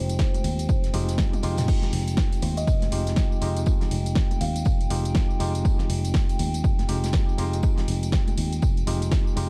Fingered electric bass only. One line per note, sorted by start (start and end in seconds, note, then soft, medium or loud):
0.00 0.16 F1 loud
0.44 0.66 D#2 medium
0.69 0.91 F1 medium
0.94 1.16 F1 medium
1.43 1.65 F1 medium
1.93 2.15 F1 loud
2.43 2.64 D#2 loud
2.67 2.89 F1 medium
2.92 3.14 F1 medium
3.42 3.63 F1 medium
3.91 4.13 F1 loud
4.41 4.63 D#2 loud
4.66 4.87 F1 medium
4.90 5.12 F1 medium
5.40 5.62 F1 medium
5.90 6.11 F1 loud
6.39 6.61 D#2 loud
6.64 6.86 F1 medium
6.89 7.11 F1 medium
7.38 7.60 F1 medium
7.88 8.10 F1 loud
8.38 8.59 D#2 loud
8.62 8.84 F1 loud
8.87 9.09 F1 medium
9.37 9.49 F1 loud